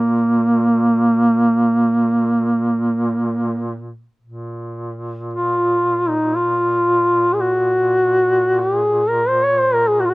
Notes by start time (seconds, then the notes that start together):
Already playing: A#2 A#3
4.22 A#2
5.34 F4
6.09 D#4
6.36 F4
7.33 G#4
7.41 F#4
8.59 G4
8.77 G#4
9.09 A#4
9.28 C5
9.44 C#5
9.60 C5
9.74 A#4
9.88 G#4
10.00 F#4
10.05 F4
10.10 F#4